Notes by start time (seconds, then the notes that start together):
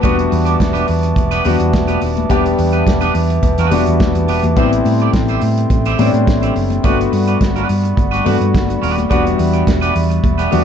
Already playing: B4 A5
0.01 E1 G3 B3 D4 F#4 G4 B4 E5 D6, kick, closed hi-hat, muted conga
0.19 closed hi-hat
0.30 E2, muted clean electric guitar stroke, open hi-hat, muted conga
0.45 B3 D4 G4 D5, closed hi-hat
0.59 E1, muted clean electric guitar stroke, kick, snare, closed hi-hat, high conga
0.73 B3 D4 G4 B4, closed hi-hat
0.87 E2, muted clean electric guitar stroke, open hi-hat
1.03 muted clean electric guitar stroke, closed hi-hat
1.16 E1, muted clean electric guitar stroke, kick, closed hi-hat, muted conga
1.31 B3 D4 G4 B4, closed hi-hat
1.44 E2 G3 B3 D4 F#4 G4 B4, open hi-hat, muted conga, low conga
1.60 E2, closed hi-hat
1.73 E1, muted clean electric guitar stroke, kick, snare, closed hi-hat, high conga
1.88 B3 D4 G4 B4, closed hi-hat
2.01 D#1, muted clean electric guitar stroke, open hi-hat
2.16 muted clean electric guitar stroke, closed hi-hat, high conga
2.29 E1 G3 B3 D4 G4 B4, kick, closed hi-hat, muted conga
2.45 muted clean electric guitar stroke, closed hi-hat
2.58 E2, muted clean electric guitar stroke, open hi-hat, muted conga
2.73 B3 D4 G4 B4, closed hi-hat
2.87 E1, kick, snare, closed hi-hat, high conga
3.01 B3 D4 G4 B4, closed hi-hat
3.15 E2, muted clean electric guitar stroke, open hi-hat
3.30 muted clean electric guitar stroke, closed hi-hat
3.43 E1, muted clean electric guitar stroke, kick, closed hi-hat, muted conga
3.58 E2 B3 D4 G4 B4, closed hi-hat
3.70 E1 G3 B3 D4 F#4 G4 B4, open hi-hat, muted conga, low conga
3.86 E2, closed hi-hat
4.00 E1, muted clean electric guitar stroke, kick, snare, closed hi-hat, high conga
4.15 E2, muted clean electric guitar stroke, closed hi-hat
4.28 E1 B3 D4 G4 B4, open hi-hat
4.43 E2, muted clean electric guitar stroke, closed hi-hat, high conga
4.56 A1 G3 B3 C4 E4 G4 A4 C5 G5 C6, kick, closed hi-hat, muted conga
4.72 muted clean electric guitar stroke, closed hi-hat
4.85 A2, muted clean electric guitar stroke, open hi-hat, muted conga
5.00 C4 E4 G4 D5, closed hi-hat
5.13 A1, muted clean electric guitar stroke, kick, snare, closed hi-hat, high conga
5.28 C4 E4 G4 C5, closed hi-hat
5.41 A2, muted clean electric guitar stroke, open hi-hat
5.57 muted clean electric guitar stroke, closed hi-hat
5.70 A1, muted clean electric guitar stroke, kick, closed hi-hat, muted conga
5.85 C4 E4 G4 C5, closed hi-hat
5.98 A2 G3 B3 C4 C#4 E4 G4 C5, open hi-hat, muted conga, low conga
6.06 D4
6.13 A2, muted clean electric guitar stroke, closed hi-hat
6.27 A1, muted clean electric guitar stroke, kick, snare, closed hi-hat, high conga
6.42 C4 E4 G4 C5, closed hi-hat
6.55 F#1, muted clean electric guitar stroke, open hi-hat
6.70 muted clean electric guitar stroke, closed hi-hat, high conga
6.83 G1 G3 A3 B3 D4 F#4 B4 D5 F#5 B5, kick, closed hi-hat, muted conga
6.99 muted clean electric guitar stroke, closed hi-hat
7.11 G2, muted clean electric guitar stroke, open hi-hat, muted conga
7.27 G3 D4 F#4 B4, closed hi-hat
7.41 G1, muted clean electric guitar stroke, kick, snare, closed hi-hat, high conga
7.56 G3 D4 F#4 B4, closed hi-hat
7.69 G2, muted clean electric guitar stroke, open hi-hat
7.83 muted clean electric guitar stroke, closed hi-hat
7.97 G1, muted clean electric guitar stroke, kick, closed hi-hat, muted conga
8.11 G3 D4 F#4 B4, closed hi-hat
8.24 G2 G3 A3 B3 D4 F#4 B4, open hi-hat, muted conga, low conga
8.41 G2, muted clean electric guitar stroke, closed hi-hat
8.54 G1, muted clean electric guitar stroke, kick, snare, closed hi-hat, high conga
8.69 muted clean electric guitar stroke, closed hi-hat
8.82 D#1 G3 D4 F#4 B4, open hi-hat
8.97 muted clean electric guitar stroke, closed hi-hat, high conga
9.09 E1 G3 B3 D4 F#4 G4 B4 E5 B5, kick, closed hi-hat, muted conga
9.24 muted clean electric guitar stroke, closed hi-hat
9.38 E2, muted clean electric guitar stroke, open hi-hat, muted conga
9.53 B3 D4 G4 D5, closed hi-hat
9.67 E1, muted clean electric guitar stroke, kick, snare, closed hi-hat, high conga
9.81 B3 D4 G4 B4, closed hi-hat
9.95 E2, muted clean electric guitar stroke, open hi-hat
10.10 muted clean electric guitar stroke, closed hi-hat
10.23 E1, muted clean electric guitar stroke, kick, closed hi-hat, muted conga
10.38 B3 D4 G4 B4, closed hi-hat
10.51 E2 G3 B3 D4 F#4 G4 B4, open hi-hat, muted conga, low conga